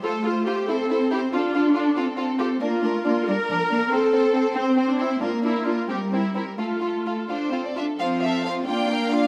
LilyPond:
<<
  \new Staff \with { instrumentName = "Violin section" } { \time 6/8 \key f \major \tempo 4. = 91 << { r2. | r2. | r2. | r2. |
r2. | r4. c''8. d''16 e''8 | f''8 e''8 f''8 g''4 f''8 | } \\ { c''8 c''8 c''8 c''8 c''8 c''8 | a'8 a'8 a'8 a'8 a'8 a'8 | bes'8 bes'8 bes'8 bes'8 bes'8 bes'8 | c''8 c''8 c''8 c''8 c''8 c''8 |
bes'8 bes'8 bes'8 bes'8 bes'8 bes'8 | a'8 a'8 a'8 a'8 a'8 a'8 | r2. | } >> }
  \new Staff \with { instrumentName = "Viola section" } { \time 6/8 \key f \major a'8 f'8 g'8 a'4 g'8 | f'4 d'8 r4 g'8 | f'4. bes'4. | a'4. c'8. d'16 e'8 |
f'8 e'8 f'8 g'8 e'8 e'8 | f'4. r4. | f4. bes4. | }
  \new Staff \with { instrumentName = "Violin section" } { \time 6/8 \key f \major f'8 f'8 f'8 e'8 e'8 e'8 | f'8 f'8 f'8 f'8 f'8 f'8 | d'8 d'8 d'8 d'8 d'8 d'8 | c'8 c'8 c'8 c'8 c'8 c'8 |
d'8 d'8 d'8 c'8 c'8 c'8 | f'8 f'8 f'8 f'8 f'8 f'8 | <f' c''>8 <a' f''>8 <f' c''>8 <f' d''>8 <bes' f''>8 <f' d''>8 | }
  \new Staff \with { instrumentName = "Cello section" } { \time 6/8 \key f \major a4. c'4. | d'4. c'4. | bes8 a8 bes8 g8 f8 bes8 | c'2. |
bes4. g4. | a4. d'8 c'8 d'8 | c'4. d'4. | }
>>